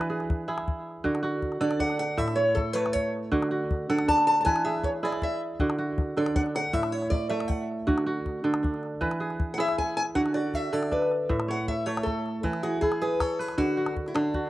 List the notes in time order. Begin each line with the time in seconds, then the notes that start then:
Already playing: E3 A3 D4 F#4 A4 B4
0.01 calabash click
0.10 G#4
0.20 calabash click
0.30 calabash thump
0.48 E4 G#4
0.58 calabash click
0.68 calabash thump
1.04 D3 F#4, calabash thump
1.15 calabash click
1.23 F#4, calabash click
1.42 calabash thump
1.52 calabash click
1.61 D3 A4 D5
1.71 calabash click
1.79 D4 F#5, calabash thump
1.90 calabash click
1.99 F#5
2.17 A2 E5, calabash thump
2.28 calabash click
2.36 C#5
2.55 A4, calabash thump
2.73 A3 B4 C#5, calabash click
2.86 calabash click
2.93 C#5, calabash thump
3.32 D3 F#4, calabash thump
3.42 calabash click
3.51 F#4
3.71 calabash thump
3.89 D3 A4 F#5, calabash click
3.99 calabash click
4.08 D4 A5, calabash thump
4.18 calabash click
4.27 A5, calabash click
4.41 A5
4.45 E3 B4 G#5, calabash thump
4.56 calabash click
4.65 G#4 E5
4.75 calabash click
4.84 C#5, calabash thump
5.03 E4 G#4 D5
5.13 calabash click
5.22 E5, calabash thump
5.60 D3 F#4, calabash thump
5.70 calabash click
5.78 F#4
5.98 calabash thump
6.17 D3 A4 D5, calabash click
6.26 calabash click
6.36 D4 F#5, calabash thump
6.46 calabash click
6.55 F#5, calabash click
6.73 A2 E5, calabash thump
6.83 calabash click
6.92 C#5
7.02 calabash click
7.10 D5, calabash thump
7.29 A3 E5
7.40 calabash click
7.48 F#5, calabash thump
7.87 D3 F#4, calabash thump
7.98 calabash click
8.06 F#4
8.26 calabash thump
8.44 D3 A4, calabash click
8.54 calabash click
8.63 D4, calabash thump
8.74 calabash click
8.83 calabash click
9.01 E3 B4, calabash thump
9.11 calabash click
9.20 G#4
9.30 calabash click
9.40 calabash thump
9.54 E4 F#5
9.58 G#4 E5
9.68 calabash click
9.78 G#5, calabash thump
9.97 G#5
10.15 D3 F#4 F#5, calabash thump, calabash click
10.26 calabash click
10.34 F#4 D5
10.54 E5, calabash thump
10.72 D3 A4 D5, calabash click
10.83 calabash click
10.91 D4 B4, calabash thump
11.02 calabash click
11.11 calabash click
11.29 A2 E5, calabash thump
11.40 calabash click
11.48 C#5 F#5
11.68 E5, calabash thump
11.86 A3 C#5, calabash click
11.97 calabash click
12.03 A4, calabash thump, calabash click
12.26 calabash click
12.43 E3 E4, calabash thump
12.53 calabash click
12.63 F#4 G#4
12.81 E4 G#4, calabash thump
12.92 calabash click
13.02 G#4 B4
13.20 A4 C#5, calabash thump, calabash click
13.39 G#4 B4
13.48 calabash click
13.58 D3 F#4, calabash thump
13.77 F#4
13.86 calabash click
13.96 calabash thump
14.06 E4, calabash click
14.14 D3 D4, calabash click
14.34 F#4, calabash thump